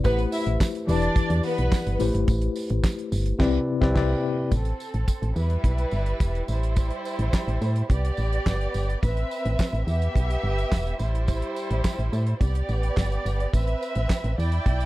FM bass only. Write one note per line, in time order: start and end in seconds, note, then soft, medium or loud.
0.05 0.26 A1 loud
0.47 0.57 A1 loud
0.88 1.09 E1 loud
1.16 1.22 E2 soft
1.30 1.41 E2 loud
1.59 1.69 B1 medium
1.87 1.97 G1 medium
2.01 2.11 A1 loud
2.14 2.25 G1 loud
2.28 2.49 A1 loud
2.70 2.81 A1 loud
3.12 3.33 G1 loud
3.40 3.59 C2 loud
3.82 3.94 C2 loud
3.96 4.15 C2 loud
4.52 4.73 A1 loud
4.94 5.05 A1 medium
5.22 5.33 A1 medium
5.36 5.57 E2 medium
5.64 5.85 B1 medium
5.92 6.14 G1 medium
6.21 6.42 E1 medium
6.49 6.91 A1 medium
7.19 7.30 A1 loud
7.48 7.58 A1 medium
7.61 7.83 A2 loud
7.90 8.11 C2 loud
8.18 8.39 A1 medium
8.46 8.68 G1 medium
8.75 8.96 G1 medium
9.03 9.24 A1 loud
9.45 9.56 A1 loud
9.73 9.84 A1 medium
9.87 10.08 E2 medium
10.16 10.37 B1 medium
10.44 10.65 G1 loud
10.72 10.93 E1 loud
11.00 11.43 A1 medium
11.71 11.81 A1 medium
11.99 12.09 A1 medium
12.13 12.34 A2 loud
12.41 12.62 C2 medium
12.69 12.90 A1 medium
12.97 13.19 G1 medium
13.26 13.47 G1 medium
13.54 13.75 A1 medium
13.96 14.07 A1 medium
14.24 14.35 A1 medium
14.38 14.59 E2 medium
14.66 14.86 B1 medium